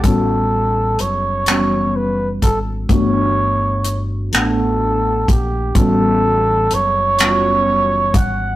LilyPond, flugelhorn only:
\new Staff \with { instrumentName = "Flugelhorn" } { \time 6/8 \key a \mixolydian \tempo 4. = 42 a'4 cis''4 b'8 a'8 | cis''4 r8 a'4 g'8 | a'4 cis''4. fis''8 | }